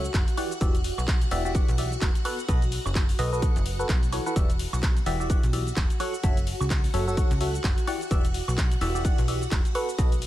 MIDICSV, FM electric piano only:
0, 0, Header, 1, 2, 480
1, 0, Start_track
1, 0, Tempo, 468750
1, 625, Time_signature, 4, 2, 24, 8
1, 10513, End_track
2, 0, Start_track
2, 0, Title_t, "FM electric piano"
2, 0, Program_c, 0, 5
2, 385, Note_on_c, 0, 52, 94
2, 385, Note_on_c, 0, 66, 87
2, 385, Note_on_c, 0, 67, 87
2, 385, Note_on_c, 0, 74, 89
2, 385, Note_on_c, 0, 78, 105
2, 527, Note_off_c, 0, 52, 0
2, 527, Note_off_c, 0, 66, 0
2, 527, Note_off_c, 0, 67, 0
2, 527, Note_off_c, 0, 74, 0
2, 527, Note_off_c, 0, 78, 0
2, 626, Note_on_c, 0, 52, 97
2, 626, Note_on_c, 0, 66, 91
2, 626, Note_on_c, 0, 67, 92
2, 626, Note_on_c, 0, 74, 91
2, 626, Note_on_c, 0, 76, 109
2, 767, Note_off_c, 0, 52, 0
2, 767, Note_off_c, 0, 66, 0
2, 767, Note_off_c, 0, 67, 0
2, 767, Note_off_c, 0, 74, 0
2, 767, Note_off_c, 0, 76, 0
2, 1345, Note_on_c, 0, 52, 102
2, 1345, Note_on_c, 0, 66, 93
2, 1345, Note_on_c, 0, 67, 95
2, 1345, Note_on_c, 0, 74, 94
2, 1345, Note_on_c, 0, 76, 113
2, 1464, Note_off_c, 0, 52, 0
2, 1464, Note_off_c, 0, 66, 0
2, 1464, Note_off_c, 0, 67, 0
2, 1464, Note_off_c, 0, 74, 0
2, 1464, Note_off_c, 0, 76, 0
2, 1486, Note_on_c, 0, 52, 89
2, 1486, Note_on_c, 0, 66, 85
2, 1486, Note_on_c, 0, 67, 84
2, 1486, Note_on_c, 0, 74, 86
2, 1486, Note_on_c, 0, 76, 101
2, 1570, Note_off_c, 0, 66, 0
2, 1570, Note_off_c, 0, 74, 0
2, 1570, Note_off_c, 0, 76, 0
2, 1571, Note_off_c, 0, 52, 0
2, 1571, Note_off_c, 0, 67, 0
2, 1585, Note_on_c, 0, 52, 89
2, 1585, Note_on_c, 0, 66, 80
2, 1585, Note_on_c, 0, 67, 82
2, 1585, Note_on_c, 0, 74, 82
2, 1585, Note_on_c, 0, 78, 95
2, 1727, Note_off_c, 0, 52, 0
2, 1727, Note_off_c, 0, 66, 0
2, 1727, Note_off_c, 0, 67, 0
2, 1727, Note_off_c, 0, 74, 0
2, 1727, Note_off_c, 0, 78, 0
2, 1825, Note_on_c, 0, 66, 69
2, 1825, Note_on_c, 0, 76, 82
2, 1826, Note_on_c, 0, 52, 75
2, 1826, Note_on_c, 0, 67, 68
2, 1826, Note_on_c, 0, 74, 70
2, 1967, Note_off_c, 0, 52, 0
2, 1967, Note_off_c, 0, 66, 0
2, 1967, Note_off_c, 0, 67, 0
2, 1967, Note_off_c, 0, 74, 0
2, 1967, Note_off_c, 0, 76, 0
2, 2305, Note_on_c, 0, 59, 94
2, 2305, Note_on_c, 0, 66, 86
2, 2305, Note_on_c, 0, 71, 88
2, 2306, Note_on_c, 0, 69, 86
2, 2306, Note_on_c, 0, 78, 103
2, 2447, Note_off_c, 0, 59, 0
2, 2447, Note_off_c, 0, 66, 0
2, 2447, Note_off_c, 0, 69, 0
2, 2447, Note_off_c, 0, 71, 0
2, 2447, Note_off_c, 0, 78, 0
2, 2544, Note_on_c, 0, 66, 91
2, 2544, Note_on_c, 0, 71, 92
2, 2544, Note_on_c, 0, 75, 110
2, 2545, Note_on_c, 0, 59, 100
2, 2545, Note_on_c, 0, 69, 88
2, 2686, Note_off_c, 0, 59, 0
2, 2686, Note_off_c, 0, 66, 0
2, 2686, Note_off_c, 0, 71, 0
2, 2686, Note_off_c, 0, 75, 0
2, 2687, Note_off_c, 0, 69, 0
2, 3264, Note_on_c, 0, 59, 102
2, 3264, Note_on_c, 0, 66, 93
2, 3264, Note_on_c, 0, 71, 91
2, 3265, Note_on_c, 0, 69, 90
2, 3265, Note_on_c, 0, 75, 114
2, 3384, Note_off_c, 0, 59, 0
2, 3384, Note_off_c, 0, 66, 0
2, 3384, Note_off_c, 0, 69, 0
2, 3384, Note_off_c, 0, 71, 0
2, 3384, Note_off_c, 0, 75, 0
2, 3405, Note_on_c, 0, 59, 89
2, 3405, Note_on_c, 0, 66, 84
2, 3405, Note_on_c, 0, 71, 82
2, 3406, Note_on_c, 0, 69, 84
2, 3406, Note_on_c, 0, 75, 101
2, 3490, Note_off_c, 0, 59, 0
2, 3490, Note_off_c, 0, 66, 0
2, 3490, Note_off_c, 0, 69, 0
2, 3490, Note_off_c, 0, 71, 0
2, 3490, Note_off_c, 0, 75, 0
2, 3505, Note_on_c, 0, 66, 81
2, 3505, Note_on_c, 0, 69, 79
2, 3506, Note_on_c, 0, 78, 98
2, 3647, Note_off_c, 0, 66, 0
2, 3647, Note_off_c, 0, 69, 0
2, 3647, Note_off_c, 0, 78, 0
2, 3884, Note_on_c, 0, 66, 85
2, 3884, Note_on_c, 0, 71, 83
2, 3885, Note_on_c, 0, 59, 90
2, 3885, Note_on_c, 0, 69, 86
2, 3885, Note_on_c, 0, 78, 100
2, 3987, Note_off_c, 0, 59, 0
2, 3987, Note_off_c, 0, 66, 0
2, 3987, Note_off_c, 0, 69, 0
2, 3987, Note_off_c, 0, 71, 0
2, 3987, Note_off_c, 0, 78, 0
2, 4224, Note_on_c, 0, 73, 86
2, 4225, Note_on_c, 0, 52, 77
2, 4225, Note_on_c, 0, 66, 72
2, 4225, Note_on_c, 0, 69, 73
2, 4225, Note_on_c, 0, 71, 70
2, 4344, Note_off_c, 0, 52, 0
2, 4344, Note_off_c, 0, 66, 0
2, 4344, Note_off_c, 0, 69, 0
2, 4344, Note_off_c, 0, 71, 0
2, 4344, Note_off_c, 0, 73, 0
2, 4365, Note_on_c, 0, 52, 97
2, 4365, Note_on_c, 0, 66, 88
2, 4365, Note_on_c, 0, 69, 86
2, 4365, Note_on_c, 0, 71, 89
2, 4365, Note_on_c, 0, 78, 104
2, 4450, Note_off_c, 0, 52, 0
2, 4450, Note_off_c, 0, 66, 0
2, 4450, Note_off_c, 0, 69, 0
2, 4450, Note_off_c, 0, 71, 0
2, 4450, Note_off_c, 0, 78, 0
2, 4464, Note_on_c, 0, 66, 86
2, 4464, Note_on_c, 0, 67, 90
2, 4465, Note_on_c, 0, 52, 97
2, 4465, Note_on_c, 0, 76, 107
2, 4606, Note_off_c, 0, 52, 0
2, 4606, Note_off_c, 0, 66, 0
2, 4606, Note_off_c, 0, 67, 0
2, 4607, Note_off_c, 0, 76, 0
2, 5184, Note_on_c, 0, 52, 103
2, 5184, Note_on_c, 0, 76, 112
2, 5185, Note_on_c, 0, 66, 94
2, 5185, Note_on_c, 0, 67, 94
2, 5185, Note_on_c, 0, 74, 94
2, 5304, Note_off_c, 0, 52, 0
2, 5304, Note_off_c, 0, 66, 0
2, 5304, Note_off_c, 0, 67, 0
2, 5304, Note_off_c, 0, 74, 0
2, 5304, Note_off_c, 0, 76, 0
2, 5325, Note_on_c, 0, 52, 92
2, 5325, Note_on_c, 0, 66, 84
2, 5325, Note_on_c, 0, 67, 83
2, 5325, Note_on_c, 0, 74, 85
2, 5325, Note_on_c, 0, 76, 100
2, 5410, Note_off_c, 0, 52, 0
2, 5410, Note_off_c, 0, 66, 0
2, 5410, Note_off_c, 0, 67, 0
2, 5410, Note_off_c, 0, 74, 0
2, 5410, Note_off_c, 0, 76, 0
2, 5424, Note_on_c, 0, 52, 90
2, 5424, Note_on_c, 0, 66, 81
2, 5424, Note_on_c, 0, 67, 78
2, 5424, Note_on_c, 0, 74, 82
2, 5425, Note_on_c, 0, 78, 95
2, 5566, Note_off_c, 0, 52, 0
2, 5566, Note_off_c, 0, 66, 0
2, 5566, Note_off_c, 0, 67, 0
2, 5566, Note_off_c, 0, 74, 0
2, 5566, Note_off_c, 0, 78, 0
2, 5663, Note_on_c, 0, 52, 76
2, 5664, Note_on_c, 0, 66, 69
2, 5664, Note_on_c, 0, 67, 68
2, 5664, Note_on_c, 0, 74, 67
2, 5664, Note_on_c, 0, 76, 84
2, 5806, Note_off_c, 0, 52, 0
2, 5806, Note_off_c, 0, 66, 0
2, 5806, Note_off_c, 0, 67, 0
2, 5806, Note_off_c, 0, 74, 0
2, 5806, Note_off_c, 0, 76, 0
2, 6144, Note_on_c, 0, 54, 95
2, 6144, Note_on_c, 0, 66, 90
2, 6144, Note_on_c, 0, 69, 88
2, 6144, Note_on_c, 0, 73, 85
2, 6144, Note_on_c, 0, 78, 106
2, 6286, Note_off_c, 0, 54, 0
2, 6286, Note_off_c, 0, 66, 0
2, 6286, Note_off_c, 0, 69, 0
2, 6286, Note_off_c, 0, 73, 0
2, 6286, Note_off_c, 0, 78, 0
2, 6383, Note_on_c, 0, 69, 91
2, 6383, Note_on_c, 0, 76, 107
2, 6384, Note_on_c, 0, 54, 100
2, 6384, Note_on_c, 0, 66, 89
2, 6384, Note_on_c, 0, 73, 91
2, 6526, Note_off_c, 0, 54, 0
2, 6526, Note_off_c, 0, 66, 0
2, 6526, Note_off_c, 0, 69, 0
2, 6526, Note_off_c, 0, 73, 0
2, 6526, Note_off_c, 0, 76, 0
2, 7104, Note_on_c, 0, 54, 101
2, 7104, Note_on_c, 0, 69, 95
2, 7104, Note_on_c, 0, 73, 93
2, 7105, Note_on_c, 0, 66, 93
2, 7105, Note_on_c, 0, 76, 111
2, 7224, Note_off_c, 0, 54, 0
2, 7224, Note_off_c, 0, 66, 0
2, 7224, Note_off_c, 0, 69, 0
2, 7224, Note_off_c, 0, 73, 0
2, 7224, Note_off_c, 0, 76, 0
2, 7245, Note_on_c, 0, 54, 93
2, 7245, Note_on_c, 0, 66, 84
2, 7245, Note_on_c, 0, 69, 86
2, 7245, Note_on_c, 0, 73, 85
2, 7245, Note_on_c, 0, 76, 105
2, 7330, Note_off_c, 0, 54, 0
2, 7330, Note_off_c, 0, 66, 0
2, 7330, Note_off_c, 0, 69, 0
2, 7330, Note_off_c, 0, 73, 0
2, 7330, Note_off_c, 0, 76, 0
2, 7345, Note_on_c, 0, 54, 88
2, 7345, Note_on_c, 0, 66, 82
2, 7345, Note_on_c, 0, 69, 80
2, 7345, Note_on_c, 0, 73, 80
2, 7345, Note_on_c, 0, 78, 97
2, 7487, Note_off_c, 0, 54, 0
2, 7487, Note_off_c, 0, 66, 0
2, 7487, Note_off_c, 0, 69, 0
2, 7487, Note_off_c, 0, 73, 0
2, 7487, Note_off_c, 0, 78, 0
2, 7584, Note_on_c, 0, 73, 70
2, 7585, Note_on_c, 0, 54, 73
2, 7585, Note_on_c, 0, 66, 68
2, 7585, Note_on_c, 0, 69, 69
2, 7585, Note_on_c, 0, 76, 81
2, 7726, Note_off_c, 0, 73, 0
2, 7727, Note_off_c, 0, 54, 0
2, 7727, Note_off_c, 0, 66, 0
2, 7727, Note_off_c, 0, 69, 0
2, 7727, Note_off_c, 0, 76, 0
2, 8063, Note_on_c, 0, 67, 87
2, 8063, Note_on_c, 0, 74, 87
2, 8063, Note_on_c, 0, 78, 107
2, 8064, Note_on_c, 0, 52, 95
2, 8064, Note_on_c, 0, 66, 88
2, 8206, Note_off_c, 0, 52, 0
2, 8206, Note_off_c, 0, 66, 0
2, 8206, Note_off_c, 0, 67, 0
2, 8206, Note_off_c, 0, 74, 0
2, 8206, Note_off_c, 0, 78, 0
2, 8303, Note_on_c, 0, 52, 97
2, 8303, Note_on_c, 0, 76, 112
2, 8304, Note_on_c, 0, 66, 89
2, 8304, Note_on_c, 0, 67, 92
2, 8304, Note_on_c, 0, 74, 93
2, 8446, Note_off_c, 0, 52, 0
2, 8446, Note_off_c, 0, 66, 0
2, 8446, Note_off_c, 0, 67, 0
2, 8446, Note_off_c, 0, 74, 0
2, 8446, Note_off_c, 0, 76, 0
2, 9024, Note_on_c, 0, 52, 102
2, 9024, Note_on_c, 0, 66, 95
2, 9024, Note_on_c, 0, 67, 93
2, 9024, Note_on_c, 0, 76, 112
2, 9025, Note_on_c, 0, 74, 91
2, 9144, Note_off_c, 0, 52, 0
2, 9144, Note_off_c, 0, 66, 0
2, 9144, Note_off_c, 0, 67, 0
2, 9144, Note_off_c, 0, 74, 0
2, 9144, Note_off_c, 0, 76, 0
2, 9164, Note_on_c, 0, 52, 90
2, 9164, Note_on_c, 0, 66, 85
2, 9164, Note_on_c, 0, 67, 84
2, 9164, Note_on_c, 0, 74, 84
2, 9164, Note_on_c, 0, 76, 101
2, 9249, Note_off_c, 0, 52, 0
2, 9249, Note_off_c, 0, 66, 0
2, 9249, Note_off_c, 0, 67, 0
2, 9249, Note_off_c, 0, 74, 0
2, 9249, Note_off_c, 0, 76, 0
2, 9263, Note_on_c, 0, 52, 90
2, 9264, Note_on_c, 0, 66, 79
2, 9264, Note_on_c, 0, 67, 79
2, 9264, Note_on_c, 0, 74, 82
2, 9264, Note_on_c, 0, 78, 100
2, 9406, Note_off_c, 0, 52, 0
2, 9406, Note_off_c, 0, 66, 0
2, 9406, Note_off_c, 0, 67, 0
2, 9406, Note_off_c, 0, 74, 0
2, 9406, Note_off_c, 0, 78, 0
2, 9503, Note_on_c, 0, 66, 70
2, 9503, Note_on_c, 0, 76, 82
2, 9504, Note_on_c, 0, 52, 75
2, 9504, Note_on_c, 0, 67, 69
2, 9504, Note_on_c, 0, 74, 70
2, 9646, Note_off_c, 0, 52, 0
2, 9646, Note_off_c, 0, 66, 0
2, 9646, Note_off_c, 0, 67, 0
2, 9646, Note_off_c, 0, 74, 0
2, 9646, Note_off_c, 0, 76, 0
2, 9984, Note_on_c, 0, 59, 93
2, 9984, Note_on_c, 0, 66, 89
2, 9984, Note_on_c, 0, 69, 86
2, 9984, Note_on_c, 0, 71, 86
2, 9984, Note_on_c, 0, 78, 105
2, 10126, Note_off_c, 0, 59, 0
2, 10126, Note_off_c, 0, 66, 0
2, 10126, Note_off_c, 0, 69, 0
2, 10126, Note_off_c, 0, 71, 0
2, 10126, Note_off_c, 0, 78, 0
2, 10224, Note_on_c, 0, 59, 99
2, 10224, Note_on_c, 0, 69, 89
2, 10224, Note_on_c, 0, 71, 89
2, 10224, Note_on_c, 0, 75, 109
2, 10225, Note_on_c, 0, 66, 90
2, 10366, Note_off_c, 0, 59, 0
2, 10366, Note_off_c, 0, 69, 0
2, 10366, Note_off_c, 0, 71, 0
2, 10366, Note_off_c, 0, 75, 0
2, 10367, Note_off_c, 0, 66, 0
2, 10513, End_track
0, 0, End_of_file